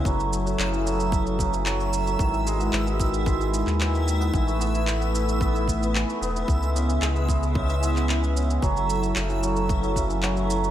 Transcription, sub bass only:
X:1
M:4/4
L:1/16
Q:1/4=112
K:F#dor
V:1 name="Sub bass" clef=bass
F,,,4 F,,,12 | G,,,4 G,,,6- G,,, D,,4- D,, | A,,,12- A,,, z E,,,2 | C,,4 C,,12 |
F,,,4 F,,,12 |]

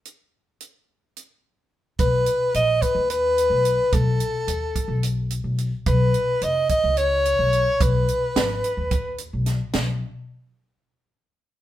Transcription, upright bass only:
X:1
M:7/8
L:1/16
Q:1/4=108
K:Blyd
V:1 name="Upright bass" clef=bass
z12 z2 | B,,,2 z2 A,,,2 z D,,4 B,,,2 z | B,,,2 z2 D,,2 z B,,,4 B,,,2 z | B,,,2 z2 E,,,2 z C,,4 B,,,2 z |
B,,,2 z2 G,,,2 z D,,4 B,,,2 z | B,,,2 z12 |]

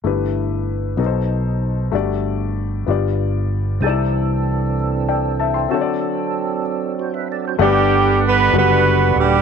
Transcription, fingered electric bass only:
X:1
M:6/8
L:1/8
Q:3/8=64
K:G
V:1 name="Fingered electric bass" clef=bass
G,,,3 B,,,3 | G,,,3 G,,,3 | C,,6 | z6 |
G,,,3 F,,,2 _E,,, |]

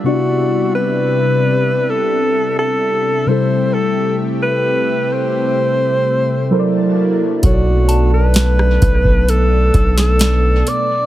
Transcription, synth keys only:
X:1
M:4/4
L:1/8
Q:1/4=65
K:Ador
V:1 name="Synth keys"
[C,B,DEd]6- [C,B,DEd] [C,G,EA]- | [C,G,EA]6 [F,EA^Acd]2 | [B,,F,A^cd]8 |]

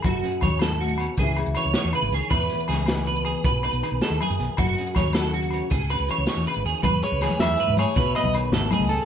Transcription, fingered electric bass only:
X:1
M:12/8
L:1/16
Q:3/8=106
K:E
V:1 name="Fingered electric bass" clef=bass
F,,,2 z2 D,,8 C,,3 C,, z C,, z E,, z G,,, C,, z | E,,2 z2 C,,8 B,,,3 B,,, z B,,, z D,, z F,, B,,, z | F,,,2 z2 D,,8 C,,3 C,, z C,, z E,, z G,,, D,, z | E,,2 z C,,2 z E,,2 z G,,2 z B,,,2 z B,,,3 G,,,2 z C,,2 z |]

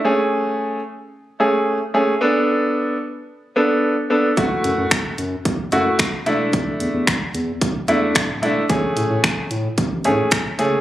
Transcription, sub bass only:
X:1
M:4/4
L:1/16
Q:1/4=111
K:A
V:1 name="Sub bass" clef=bass
z16 | z16 | F,,,2 F,, F,, F,,,2 F,,2 F,,,2 F,,2 B,,,2 E,,,2- | E,,,2 E,, E,, E,,,2 E,,2 E,,,2 E,,2 D,,,2 E,,,2 |
A,,,2 A,, A,, A,,,2 A,,2 A,,,2 A,,2 E,,,2 F,,,2 |]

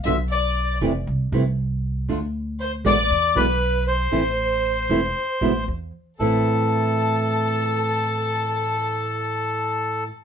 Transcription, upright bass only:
X:1
M:4/4
L:1/8
Q:1/4=117
K:Am
V:1 name="Upright bass" clef=bass
B,,,3 F,,, C,, C,,3 | D,,3 A,,, E,, B,,,3 | A,,,3 E,,, z A,,, E,, z | A,,, z6 z |
z8 |]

